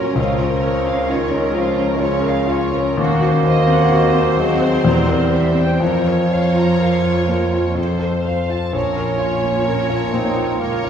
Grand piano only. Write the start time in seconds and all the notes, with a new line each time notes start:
Already playing: A#2 F3 C#4 F4 A#4
0.15 C#2
0.39 F4
0.63 A#4
0.87 C#4
1.10 F4
1.31 C#4
1.54 F3
1.76 C#4
1.99 F4
2.21 A#4
2.47 F4
2.72 C#4
2.97 D#2
3.21 F#4
3.44 C5
3.67 C4
3.90 F#4
4.13 C4
4.37 F#3
4.61 C4
4.85 E2
5.08 A#4
5.33 C5
5.55 C4
5.80 F2
6.05 A#4
6.31 C#5
6.54 F4
6.79 A#4
7.03 F4
7.28 A#3
7.53 F4
7.75 F2
7.99 A4
8.25 C5
8.50 F4
8.73 A#1
8.96 A#4
9.19 F4
9.43 A#3
9.65 A#4
9.90 F4
10.13 A#3
10.36 F4
10.61 A#4
10.84 F4